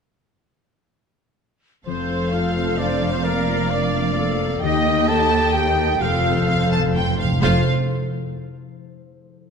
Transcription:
1.86 double bass section F1, cello section F2, harp F3, french horn section C4, viola section A4 C5, clarinet A4, flute section C5, trumpet C5, violin section C5 F5
2.10 harp F4
2.32 french horn section F4, flute section F5, violin section F5, trumpet F5
2.56 harp F5
2.78 french horn section D4, clarinet C5, flute section D5, trumpet D5, violin section D5, harp A5
3.12 french horn section C4, flute section C5, trumpet C5, violin section C5
3.23 harp F3, viola section A#3 D5, french horn section A#3, flute section A#4, trumpet A#4, violin section A#4, clarinet D5
3.47 harp F4
3.69 french horn section D4, clarinet A#4, flute section D5, trumpet D5, violin section D5
3.94 harp F5
4.17 clarinet A4, harp D6
4.62 double bass section D#2, cello section D#2, harp D#3, french horn section D#4, clarinet G4, flute section D#5, viola section D#5, violin section D#5 G5, trumpet D#5
4.86 harp A#3
5.08 french horn section A4, harp D#5, violin section A5, trumpet A5, flute section A5
5.32 harp A#4
5.54 french horn section G4, flute section G5, trumpet G5, violin section G5
5.78 harp A#4
6.01 double bass section F1, cello section F2, timpani F2, harp F3, french horn section F4, clarinet A4, viola section A4 C5, flute section F5, violin section F5, trumpet F5
6.10 timpani F2
6.18 timpani F2
6.25 timpani F2, harp F4
6.33 timpani F2
6.40 timpani F2
6.47 timpani F2, harp A4, violin section F5
6.55 timpani F2
6.63 timpani F2
6.71 timpani F2, harp F5, violin section A5
6.79 timpani F2
6.85 timpani F2
6.94 timpani F2, violin section G5, harp C6
7.00 timpani F2
7.08 timpani F2
7.16 timpani F2
7.20 violin section F5
7.24 timpani F2
7.32 timpani F2
7.38 double bass section F1, harp F3 A3, french horn section F4, flute section F5, violin section F5
7.42 cello section F2, timpani F2, viola section A3 C5, harp F4 C5, trumpet F4, violin section F5
7.47 harp F5

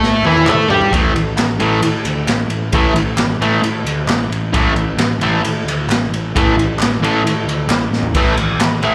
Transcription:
Already playing: picked electric bass A2, distorted electric guitar A3 A4
0.03 snare
0.22 picked electric bass E2, distorted electric guitar E3 E4, high tom
0.37 high tom
0.45 picked electric bass A2, distorted electric guitar A3 A4, clap, mid tom
0.68 picked electric bass G2, distorted electric guitar G3 G4, floor tom
0.82 floor tom
0.92 picked electric bass A1, distorted electric guitar A2 E3 A3, kick, ride
1.13 picked electric bass A1, ride
1.37 picked electric bass A1, snare, clap, ride
1.60 picked electric bass A1, distorted electric guitar A2 E3 A3, ride
1.82 picked electric bass A2, ride
2.05 picked electric bass D2, ride
2.27 picked electric bass A1, snare, clap, ride
2.48 picked electric bass A1, ride
2.72 picked electric bass A1, distorted electric guitar A2 E3 A3, kick, ride
2.94 picked electric bass A1, ride
3.16 picked electric bass A1, snare, clap, ride
3.38 picked electric bass A1, distorted electric guitar A2 E3 A3, ride
3.62 picked electric bass A2, ride
3.84 picked electric bass D2, ride
4.07 picked electric bass A1, snare, clap, ride
4.29 picked electric bass A1, ride
4.53 picked electric bass A1, distorted electric guitar A2 E3 A3, kick, ride
4.74 picked electric bass A1, ride
4.97 picked electric bass A1, snare, clap, ride
5.19 picked electric bass A1, distorted electric guitar A2 E3, ride
5.23 distorted electric guitar A3
5.41 picked electric bass A2, ride
5.64 picked electric bass D2, ride
5.87 picked electric bass A1, clap, ride
5.92 snare
6.09 picked electric bass A1
6.14 ride
6.35 picked electric bass A1, distorted electric guitar A2 E3 A3, kick, ride
6.56 picked electric bass A1, ride
6.77 picked electric bass A1, clap
6.82 snare, ride
7.00 picked electric bass A1, distorted electric guitar A2 E3
7.04 distorted electric guitar A3, ride
7.22 picked electric bass A2
7.27 ride
7.45 picked electric bass D2
7.49 ride
7.67 picked electric bass A1, snare, clap, ride
7.90 picked electric bass A1, snare
8.03 floor tom
8.14 picked electric bass A1, distorted electric guitar A2 E3 A3, kick, ride, crash
8.35 picked electric bass A1, ride
8.57 picked electric bass A1, snare, clap, ride
8.81 picked electric bass A1, distorted electric guitar A2 E3 A3, ride

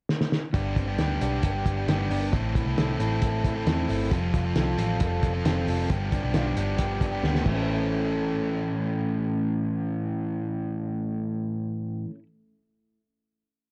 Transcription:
0.10 snare
0.21 snare
0.32 snare
0.54 picked electric bass G1, overdriven electric guitar G2 D3 G3 B3 D4 G4, kick, closed hi-hat
0.76 picked electric bass G1, clean electric guitar C4, kick, closed hi-hat
0.88 overdriven electric guitar G3 B3 D4 G4
0.98 picked electric bass D2, clean electric guitar G4, snare, closed hi-hat
1.21 picked electric bass B1, overdriven electric guitar G3 B3 D4 G4, closed hi-hat
1.43 picked electric bass G1, clean electric guitar G4, kick, closed hi-hat
1.65 picked electric bass G1, clean electric guitar D4, kick, closed hi-hat
1.77 overdriven electric guitar G3 B3 D4 G4
1.88 picked electric bass G1, overdriven electric guitar G3 B3 D4 G4, snare, closed hi-hat
2.09 picked electric bass G1, overdriven electric guitar G3 B3 D4 G4, open hi-hat
2.32 picked electric bass A1, overdriven electric guitar A2 E3 A3 C4 E4 A4, kick, closed hi-hat
2.55 clean electric guitar E4, kick, closed hi-hat
2.65 picked electric bass C2, overdriven electric guitar A3 C4 E4 A4
2.77 picked electric bass C2, clean electric guitar A4, snare, closed hi-hat
2.99 picked electric bass A1, overdriven electric guitar A3 C4 E4 A4, closed hi-hat
3.22 clean electric guitar A4, kick, closed hi-hat
3.44 clean electric guitar E4, kick, closed hi-hat
3.55 overdriven electric guitar A3 C4 E4 A4
3.66 picked electric bass E2, overdriven electric guitar A3 C4 E4 A4, snare, closed hi-hat
3.89 picked electric bass G1, overdriven electric guitar A3 C4 E4 A4, open hi-hat
4.11 picked electric bass F1, overdriven electric guitar F3 G3 C4 F4 A4, kick, closed hi-hat
4.34 picked electric bass F1, clean electric guitar F4, kick, closed hi-hat
4.45 overdriven electric guitar C4 F4 A4
4.56 picked electric bass C2, clean electric guitar A4, snare, closed hi-hat
4.78 picked electric bass A1, overdriven electric guitar G3 C4 F4 A4, closed hi-hat
5.00 picked electric bass F1, clean electric guitar A4, kick, closed hi-hat
5.23 picked electric bass F1, clean electric guitar F4, kick, closed hi-hat
5.34 overdriven electric guitar C4 F4 A4
5.45 picked electric bass F1, overdriven electric guitar G3 C4 F4 A4, snare, closed hi-hat
5.68 picked electric bass F1, overdriven electric guitar G3 C4 F4 A4, open hi-hat
5.89 picked electric bass G1, overdriven electric guitar G2 D3 F3 B3 D4 G4, kick, closed hi-hat
6.12 clean electric guitar D4, kick, closed hi-hat
6.23 picked electric bass B1, overdriven electric guitar F3 B3 D4 G4
6.34 picked electric bass B1, clean electric guitar F4, snare, closed hi-hat
6.47 clean electric guitar G4
6.56 picked electric bass G1, overdriven electric guitar F3 B3 D4 G4, closed hi-hat
6.79 clean electric guitar G4, kick, closed hi-hat
7.01 clean electric guitar D4, kick, closed hi-hat
7.12 overdriven electric guitar F3 B3 D4 G4
7.24 picked electric bass D2, overdriven electric guitar F3 B3 D4 G4, snare
7.35 snare
7.40 overdriven electric guitar A2
7.45 picked electric bass A1, overdriven electric guitar E3, kick, crash
7.50 overdriven electric guitar A3, clean electric guitar E4
7.54 overdriven electric guitar C#4, clean electric guitar A4
7.58 overdriven electric guitar E4 A4

